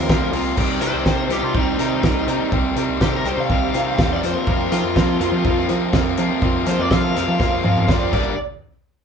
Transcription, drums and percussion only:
0.09 kick, snare
0.33 open hi-hat
0.57 kick, crash
0.81 closed hi-hat
1.06 kick, snare
1.30 snare, closed hi-hat
1.55 kick
1.79 closed hi-hat
2.03 kick, snare
2.28 closed hi-hat
2.52 kick
2.76 closed hi-hat
3.01 kick, snare
3.25 closed hi-hat
3.50 kick
3.74 closed hi-hat
3.99 kick, snare
4.23 closed hi-hat
4.47 kick
4.72 closed hi-hat
4.96 kick, snare
5.21 closed hi-hat
5.45 kick
5.69 closed hi-hat
5.93 kick, snare
6.18 closed hi-hat
6.42 kick
6.66 closed hi-hat
6.91 kick, snare
7.16 snare, closed hi-hat
7.40 kick, snare
7.65 mid tom
7.77 mid tom
7.89 kick, snare
8.13 kick, crash

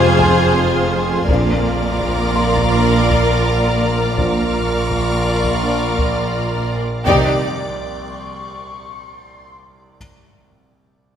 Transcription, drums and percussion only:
0.20 taiko
1.28 taiko
2.01 taiko
2.55 taiko
3.10 taiko
4.18 taiko
4.90 taiko
5.44 taiko
5.99 taiko
7.06 taiko low

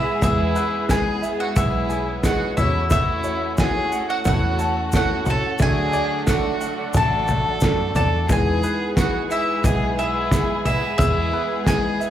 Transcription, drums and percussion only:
0.22 kick, floor tom, shaker
0.56 shaker
0.89 kick, snare, shaker
1.23 shaker
1.56 kick, floor tom, shaker
1.90 shaker
2.24 kick, snare, shaker
2.58 floor tom, shaker
2.90 kick, floor tom, shaker
3.24 shaker
3.58 kick, snare, shaker
3.92 shaker
4.25 kick, floor tom, shaker
4.59 shaker
4.92 kick, snare, shaker
5.26 floor tom, shaker
5.58 kick, floor tom, shaker
5.93 shaker
6.27 kick, snare, shaker
6.61 shaker
6.93 kick, floor tom, shaker
7.28 floor tom, shaker
7.60 kick, snare, shaker
7.95 floor tom, shaker
8.29 kick, floor tom, shaker
8.63 shaker
8.97 kick, snare, shaker
9.31 shaker
9.64 kick, floor tom, shaker
9.99 shaker
10.31 kick, snare, shaker
10.65 floor tom, shaker
10.99 kick, floor tom, shaker
11.67 kick, snare, shaker
12.01 shaker

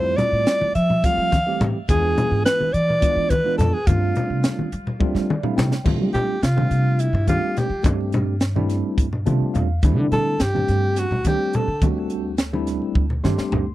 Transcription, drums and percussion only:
0.18 snare, closed hi-hat, low conga
0.34 low conga
0.47 snare, closed hi-hat
0.61 high conga, low conga
0.75 closed hi-hat
0.90 low conga
1.04 kick, closed hi-hat
1.32 kick, snare, closed hi-hat, high conga
1.48 low conga
1.61 closed hi-hat, low conga
1.89 kick, closed hi-hat, high conga
2.18 closed hi-hat, low conga
2.32 low conga
2.46 snare, closed hi-hat
2.61 high conga, low conga
2.74 closed hi-hat
2.90 low conga
3.02 kick, closed hi-hat
3.30 kick, closed hi-hat, high conga
3.47 low conga
3.59 snare, closed hi-hat, low conga
3.87 kick, closed hi-hat, high conga
4.03 low conga
4.15 closed hi-hat, low conga
4.44 snare, closed hi-hat, low conga
4.59 high conga, low conga
4.72 closed hi-hat
4.87 low conga
5.00 kick, high tom
5.15 snare
5.30 high conga
5.43 mid tom
5.58 snare, low conga
5.72 snare
5.86 kick, crash, high conga
6.01 low conga
6.14 closed hi-hat, low conga
6.43 snare, closed hi-hat
6.58 high conga, low conga
6.71 closed hi-hat
6.99 closed hi-hat
7.15 low conga
7.27 kick, closed hi-hat, high conga
7.57 snare, closed hi-hat, low conga
7.84 kick, closed hi-hat, high conga
8.01 low conga
8.12 closed hi-hat, low conga
8.41 snare, closed hi-hat
8.56 high conga, low conga
8.70 snare, closed hi-hat
8.98 kick, closed hi-hat
9.13 low conga
9.27 closed hi-hat, high conga
9.55 closed hi-hat, low conga
9.83 kick, closed hi-hat, high conga
10.12 snare, closed hi-hat, low conga
10.40 snare, closed hi-hat
10.56 high conga, low conga
10.68 snare, closed hi-hat
10.96 snare, closed hi-hat
11.12 low conga
11.25 kick, snare, closed hi-hat, high conga
11.53 closed hi-hat, low conga
11.82 kick, closed hi-hat, high conga, low conga
12.10 closed hi-hat
12.38 snare, closed hi-hat
12.54 high conga
12.67 snare, closed hi-hat, low conga
12.82 low conga
12.95 kick, high tom
13.10 low conga
13.24 snare, high conga, low conga
13.38 snare, low conga
13.52 floor tom, low conga

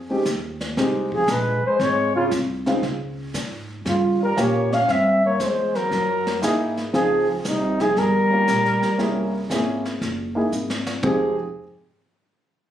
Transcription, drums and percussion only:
0.25 kick, snare, hi-hat pedal
0.61 snare
0.77 brush sweep, kick, snare
1.12 kick
1.28 kick, snare, hi-hat pedal
1.80 brush sweep, kick, snare
2.31 kick, snare, hi-hat pedal
2.66 snare
2.83 brush sweep, kick, snare
3.34 kick, snare, hi-hat pedal
3.85 brush sweep, kick, snare
4.37 kick, snare, hi-hat pedal
4.72 snare
4.88 brush sweep, kick, snare
5.40 kick, snare, hi-hat pedal
5.75 snare
5.91 brush sweep, kick, snare
6.27 snare
6.43 kick, snare, hi-hat pedal
6.77 snare
6.94 brush sweep, kick, snare
7.45 kick, snare, hi-hat pedal
7.80 snare
7.96 brush sweep, kick, snare
8.48 kick, snare, hi-hat pedal
8.65 snare
8.82 snare
8.99 brush sweep, kick, snare
9.50 kick, snare, hi-hat pedal
9.85 snare
10.01 brush sweep, kick, snare
10.52 hi-hat pedal
10.70 snare
10.86 snare
11.03 kick, floor tom

